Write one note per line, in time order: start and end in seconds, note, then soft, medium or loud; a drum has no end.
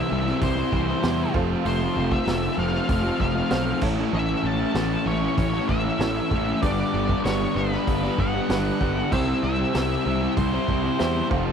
0.00 0.41 C3 medium
0.00 0.10 G3 medium
0.00 0.11 C4 loud
0.00 0.12 E4 medium
0.00 0.17 E4 medium
0.00 0.17 G4 medium
0.00 0.18 C5 medium
0.00 0.39 E5 loud
0.10 0.32 C2 medium
0.10 0.57 E3 medium
0.10 0.28 G3 medium
0.10 0.26 C4 medium
0.10 0.25 E4 medium
0.26 0.58 G3 medium
0.26 0.57 C4 medium
0.26 0.54 E4 medium
0.26 snare soft
0.42 0.62 C2 medium
0.42 1.31 C5 medium
0.42 kick loud
0.42 open hi-hat medium
0.56 0.72 G3 medium
0.56 0.73 C4 medium
0.56 0.74 E4 medium
0.72 0.93 C2 medium
0.72 1.02 E3 medium
0.72 0.88 G3 medium
0.72 0.87 C4 medium
0.72 0.85 E4 medium
0.72 kick medium
0.86 1.03 G3 medium
0.86 1.03 C4 medium
0.86 1.04 E4 medium
1.02 1.24 E2 medium
1.02 1.32 C3 loud
1.02 1.32 E3 loud
1.02 1.33 G3 medium
1.02 1.33 C4 medium
1.02 1.34 E4 medium
1.02 1.34 E4 loud
1.02 1.35 G4 medium
1.02 1.34 C5 medium
1.02 snare loud
1.02 open hi-hat medium
1.33 1.55 F1 medium
1.33 1.63 F3 medium
1.33 1.53 A3 medium
1.33 1.50 C4 loud
1.33 2.33 F4 medium
1.33 1.49 F4 loud
1.33 2.34 A4 medium
1.33 2.34 C5 loud
1.33 kick loud
1.50 1.65 A3 medium
1.50 1.66 C4 medium
1.50 1.67 F4 medium
1.65 1.86 F1 medium
1.65 1.94 F3 loud
1.65 1.82 A3 loud
1.65 1.80 C4 loud
1.65 1.78 F4 loud
1.65 2.14 C5 medium
1.65 open hi-hat medium
1.79 1.96 A3 medium
1.79 1.96 C4 medium
1.79 1.97 F4 medium
1.95 2.17 F1 medium
1.95 2.25 F3 medium
1.95 2.27 A3 medium
1.95 2.27 C4 medium
1.95 2.28 F4 medium
2.11 2.27 A3 medium
2.11 2.27 C4 medium
2.11 2.28 F4 medium
2.11 2.58 E5 loud
2.11 kick medium
2.26 2.48 F1 medium
2.26 2.56 F3 loud
2.26 2.59 A3 loud
2.26 2.59 C4 loud
2.26 2.60 F4 loud
2.26 snare loud
2.26 open hi-hat medium
2.58 2.78 F1 medium
2.58 3.05 F3 medium
2.58 2.75 A3 medium
2.58 2.74 C4 medium
2.58 2.72 F4 medium
2.58 3.20 F5 loud
2.73 3.05 A3 medium
2.73 3.04 C4 medium
2.73 3.02 F4 medium
2.73 snare soft
2.89 3.09 F1 medium
2.89 kick loud
2.89 open hi-hat medium
3.04 3.20 A3 medium
3.04 3.20 C4 medium
3.04 3.21 F4 medium
3.19 3.40 F1 medium
3.19 3.49 F3 medium
3.19 3.36 A3 medium
3.19 3.35 C4 medium
3.19 3.33 F4 medium
3.19 3.79 F5 loud
3.19 kick medium
3.35 3.50 A3 medium
3.35 3.51 C4 medium
3.35 3.52 F4 medium
3.50 3.72 B1 medium
3.50 3.80 F3 loud
3.50 3.81 A3 loud
3.50 3.81 C4 loud
3.50 3.82 F4 medium
3.50 3.81 F4 loud
3.50 3.81 A4 medium
3.50 3.83 C5 medium
3.50 snare loud
3.50 open hi-hat medium
3.80 4.03 A1 medium
3.80 4.11 A2 medium
3.80 4.12 E3 loud
3.80 3.99 A3 loud
3.80 3.98 C#4 medium
3.80 4.81 E4 medium
3.80 3.96 E4 loud
3.80 4.82 A4 medium
3.80 4.82 C#5 medium
3.80 kick loud
3.80 crash loud
3.97 4.13 A3 medium
3.97 4.14 C#4 medium
3.97 4.14 E4 medium
4.12 4.33 A1 loud
4.12 4.59 A2 loud
4.12 4.42 E3 loud
4.12 4.30 A3 loud
4.12 4.29 C#4 loud
4.12 4.27 E4 loud
4.12 4.46 E5 loud
4.28 4.44 A3 medium
4.28 4.45 C#4 medium
4.28 4.46 E4 medium
4.43 4.64 A1 medium
4.43 4.75 E3 medium
4.43 4.76 A3 medium
4.43 4.77 C#4 medium
4.43 4.78 E4 medium
4.43 5.10 A5 loud
4.60 4.75 A3 medium
4.60 4.76 C#4 medium
4.60 4.76 E4 medium
4.75 4.95 A1 medium
4.75 5.38 A2 medium
4.75 5.06 E3 loud
4.75 5.07 A3 loud
4.75 5.08 C#4 loud
4.75 snare loud
4.75 open hi-hat medium
4.79 5.09 E4 loud
5.06 5.26 A1 medium
5.06 5.53 E3 medium
5.06 5.24 A3 medium
5.06 5.23 C#4 medium
5.06 5.36 C#5 medium
5.10 5.21 E4 medium
5.23 5.55 A3 medium
5.23 5.54 C#4 medium
5.23 5.52 E4 medium
5.38 5.58 A1 medium
5.38 5.68 C#5 loud
5.38 kick loud
5.38 open hi-hat medium
5.53 5.69 A3 medium
5.53 5.70 C#4 medium
5.53 5.71 E4 medium
5.68 5.89 A1 medium
5.68 6.00 E3 medium
5.68 5.87 A3 medium
5.68 5.85 C#4 medium
5.68 5.84 E4 medium
5.68 6.62 E5 loud
5.68 kick medium
5.85 6.01 A3 medium
5.85 6.02 C#4 medium
5.85 6.02 E4 medium
5.99 6.20 A1 loud
5.99 6.61 A2 medium
5.99 6.31 E3 loud
5.99 6.32 A3 loud
5.99 6.49 E4 medium
5.99 6.50 A4 medium
5.99 6.50 C#5 medium
5.99 snare loud
5.99 open hi-hat medium
6.03 6.33 C#4 loud
6.03 6.34 E4 loud
6.31 6.51 A1 medium
6.31 6.61 E3 medium
6.31 6.50 A3 medium
6.31 6.48 C#4 medium
6.31 6.46 E4 medium
6.31 kick medium
6.48 6.63 A3 medium
6.48 6.62 C#4 medium
6.48 6.61 E4 medium
6.62 6.83 G1 medium
6.62 7.09 G2 loud
6.62 6.92 D3 loud
6.62 6.81 G3 loud
6.62 6.79 B3 loud
6.62 7.62 D4 medium
6.62 6.77 D4 medium
6.62 7.62 G4 medium
6.62 7.62 B4 medium
6.62 7.21 D5 loud
6.62 kick loud
6.62 open hi-hat medium
6.78 6.94 G3 medium
6.78 6.94 B3 medium
6.78 6.95 D4 medium
6.93 7.14 G1 loud
6.93 7.24 D3 medium
6.93 7.25 G3 medium
6.93 7.25 B3 medium
6.93 7.26 D4 medium
7.09 7.26 G3 medium
7.09 7.26 B3 medium
7.09 7.27 D4 medium
7.09 kick medium
7.24 7.45 G1 loud
7.24 7.87 G2 loud
7.24 7.54 D3 medium
7.24 7.56 G3 medium
7.24 7.56 B3 loud
7.24 7.57 D4 loud
7.24 7.53 C#5 loud
7.24 snare loud
7.24 open hi-hat medium
7.55 7.76 G1 medium
7.55 8.02 D3 medium
7.55 7.73 G3 medium
7.55 7.72 B3 medium
7.55 7.70 D4 medium
7.55 8.20 B4 medium
7.71 8.04 G3 medium
7.71 8.02 B3 medium
7.71 8.00 D4 medium
7.71 snare soft
7.87 8.08 G1 medium
7.87 kick loud
7.87 open hi-hat medium
8.02 8.18 G3 medium
8.02 8.19 B3 medium
8.02 8.20 D4 medium
8.18 8.39 G1 medium
8.18 8.49 D3 medium
8.18 8.36 G3 medium
8.18 8.35 B3 medium
8.18 8.33 D4 medium
8.18 9.15 F#5 loud
8.18 kick medium
8.34 8.50 G3 medium
8.34 8.50 B3 medium
8.34 8.51 D4 medium
8.49 8.70 G1 medium
8.49 9.10 G2 medium
8.49 8.79 D3 loud
8.49 8.80 G3 loud
8.49 8.81 B3 loud
8.49 8.99 D4 medium
8.49 8.82 D4 loud
8.49 9.00 G4 medium
8.49 9.00 B4 medium
8.49 snare loud
8.49 open hi-hat medium
8.80 9.01 G1 medium
8.80 9.10 D3 medium
8.80 8.98 G3 medium
8.80 8.96 B3 medium
8.80 8.94 D4 medium
8.80 kick medium
8.95 9.11 G3 medium
8.95 9.10 B3 medium
8.95 9.10 D4 medium
9.11 9.32 C2 loud
9.11 9.41 C3 loud
9.11 9.29 G3 loud
9.11 9.28 C4 loud
9.11 10.12 E4 medium
9.11 9.25 E4 loud
9.11 10.12 G4 medium
9.11 10.13 C5 medium
9.11 9.43 E5 loud
9.11 kick loud
9.11 crash loud
9.27 9.42 G3 medium
9.27 9.43 C4 medium
9.27 9.44 E4 medium
9.42 9.64 C2 loud
9.42 9.72 C3 medium
9.42 9.73 G3 medium
9.42 9.75 C4 medium
9.42 9.75 E4 medium
9.42 10.33 E5 loud
9.57 9.72 G3 medium
9.57 9.75 C4 medium
9.57 9.74 E4 medium
9.73 9.95 C2 medium
9.73 10.03 C3 medium
9.73 10.04 G3 medium
9.73 10.05 C4 loud
9.73 10.06 E4 loud
9.73 snare loud
9.73 open hi-hat medium
10.04 10.26 C2 medium
10.04 10.52 C3 medium
10.04 10.22 G3 medium
10.04 10.21 C4 medium
10.04 10.19 E4 medium
10.20 10.54 G3 medium
10.20 10.52 C4 medium
10.20 10.50 E4 medium
10.37 10.58 C2 loud
10.37 11.27 C5 medium
10.37 kick loud
10.37 open hi-hat medium
10.52 10.68 G3 medium
10.52 10.69 C4 medium
10.52 10.70 E4 medium
10.68 10.89 C2 medium
10.68 10.97 C3 medium
10.68 10.85 G3 medium
10.68 10.84 C4 medium
10.68 10.82 E4 medium
10.68 kick medium
10.83 10.98 G3 medium
10.83 11.00 C4 medium
10.83 11.00 E4 medium
10.98 11.21 E2 medium
10.98 11.28 C3 medium
10.98 11.29 G3 medium
10.98 11.30 C4 loud
10.98 11.30 E4 medium
10.98 11.30 E4 loud
10.98 11.31 G4 medium
10.98 11.30 C5 medium
10.98 snare loud
10.98 open hi-hat medium
11.29 11.51 F1 medium
11.29 11.52 F3 medium
11.29 11.47 A3 loud
11.29 11.45 C4 loud
11.29 11.52 F4 medium
11.29 11.44 F4 loud
11.29 11.52 A4 medium
11.29 11.52 C5 loud
11.29 kick loud
11.45 11.52 A3 medium
11.45 11.52 C4 medium
11.45 11.52 F4 medium